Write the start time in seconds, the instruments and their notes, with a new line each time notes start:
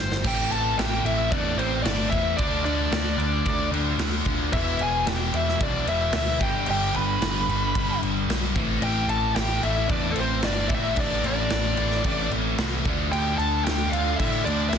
Already playing: picked electric bass G1, distorted electric guitar G2 D3 G3 B3 D4
0.00 lead electric guitar C5
0.12 snare
0.23 picked electric bass A1, distorted electric guitar A2 E3 A3 C4 E4, lead electric guitar G4 G5, kick, crash
0.52 picked electric bass A1, lead electric guitar A4 A5, crash
0.78 picked electric bass A1, lead electric guitar G4 G5, snare, crash
1.03 picked electric bass A1, lead electric guitar E4 E5, crash
1.31 picked electric bass E2, overdriven electric guitar A2 E3 A3, lead electric guitar D4 D5, kick, crash
1.57 picked electric bass A1, distorted electric guitar A2 E3 A3, lead electric guitar C4 C5, crash
1.82 picked electric bass G1, distorted electric guitar A2, lead electric guitar D4 D5, snare, crash
1.86 distorted electric guitar E3 A3
2.10 picked electric bass E2, distorted electric guitar A3 C4 E4, lead electric guitar E4 E5, kick, crash
2.14 distorted electric guitar A2 E3
2.37 picked electric bass D2, distorted electric guitar D3 A3 D4, lead electric guitar D4 D5, kick, crash
2.42 distorted electric guitar F4
2.64 picked electric bass D2, lead electric guitar D4 D5, crash
2.92 picked electric bass D2, snare, crash
3.18 picked electric bass D2, crash
3.46 picked electric bass D2, overdriven electric guitar D3 A3 D4, kick, crash
3.72 picked electric bass D2, distorted electric guitar D3 A3 D4, crash
3.98 picked electric bass D2, distorted electric guitar D3 A3 D4, snare, crash
4.25 picked electric bass D2, distorted electric guitar D3 A3 D4 F4, kick, crash
4.50 picked electric bass E1, distorted electric guitar E2 B2 E3 G#3 B3, lead electric guitar E5, kick, crash
4.54 distorted electric guitar E4, lead electric guitar E4
4.79 picked electric bass E1, lead electric guitar G#4 G#5, crash
5.06 picked electric bass E1, lead electric guitar G4 G5, snare, crash
5.34 picked electric bass E1, lead electric guitar E4 E5, crash
5.49 snare
5.59 picked electric bass B1, overdriven electric guitar E2 B2 E3, lead electric guitar D4 D5, kick, crash
5.86 picked electric bass E1, distorted electric guitar E2 B2 E3, lead electric guitar E4 E5, crash
6.13 picked electric bass D2, distorted electric guitar E2 B2 E3, lead electric guitar E4 E5, snare, crash
6.40 picked electric bass G1, distorted electric guitar G2 D3 G3 B3 D4, lead electric guitar G4 G5, kick, crash
6.66 picked electric bass G1, lead electric guitar G4, crash
6.71 lead electric guitar G5
6.94 picked electric bass G1, lead electric guitar B4 B5, crash
7.22 picked electric bass G1, snare, crash
7.48 picked electric bass G1, overdriven electric guitar G2 D3 G3, crash
7.75 picked electric bass G1, distorted electric guitar G2 D3 G3, kick, crash
8.01 picked electric bass G1, distorted electric guitar G2 D3 G3, crash
8.28 picked electric bass B1, distorted electric guitar G2 D3 G3 B3 D4, snare, crash
8.55 picked electric bass A1, distorted electric guitar A2 E3 A3 C4 E4, kick, crash
8.81 picked electric bass A1, lead electric guitar G4 G5, crash
9.08 picked electric bass A1, lead electric guitar A4 A5, crash
9.35 picked electric bass A1, lead electric guitar G4 G5, snare, crash
9.63 picked electric bass A1, overdriven electric guitar A2 E3 A3, lead electric guitar E4 E5, crash
9.88 picked electric bass E2, distorted electric guitar A2 E3 A3, lead electric guitar D4 D5, kick, crash
10.11 lead electric guitar A3 A4, distorted electric guitar A3
10.16 picked electric bass A1, distorted electric guitar A2 E3, lead electric guitar C4, crash
10.20 lead electric guitar C5
10.42 picked electric bass G1, distorted electric guitar A2 E3 A3 C4 E4, lead electric guitar D4 D5, snare, crash
10.68 picked electric bass A1, distorted electric guitar A2 E3 A3 C4, lead electric guitar E4, kick, crash
10.75 lead electric guitar E5
10.95 picked electric bass A1, lead electric guitar D4, kick, crash
11.00 lead electric guitar D5
11.24 picked electric bass A1, lead electric guitar D4 D5, crash
11.50 picked electric bass A1, snare, crash
11.77 picked electric bass A1, overdriven electric guitar A2 E3 A3, crash
11.91 snare
12.04 picked electric bass A1, distorted electric guitar A2 E3 A3, kick, crash
12.31 picked electric bass A1, distorted electric guitar A2 E3 A3, crash
12.58 picked electric bass C2, distorted electric guitar A2 E3 A3 C4 E4, snare, crash
12.84 picked electric bass D2, distorted electric guitar D3 A3 D4 F4, kick, crash
13.11 picked electric bass D2, lead electric guitar G4 G5, crash
13.36 picked electric bass D2, lead electric guitar A4 A5, crash
13.64 picked electric bass D2, lead electric guitar G4 G5, snare, crash
13.89 picked electric bass D2, overdriven electric guitar D4, lead electric guitar F4 F5, crash
13.95 overdriven electric guitar D3 A3
14.15 distorted electric guitar D3, lead electric guitar E4 E5
14.19 picked electric bass A2, distorted electric guitar A3 D4, kick, crash
14.45 picked electric bass D2, distorted electric guitar D3 A3 D4, lead electric guitar D4 D5, crash
14.70 picked electric bass C2, distorted electric guitar D3, lead electric guitar E4 E5, snare, crash
14.74 distorted electric guitar A3 D4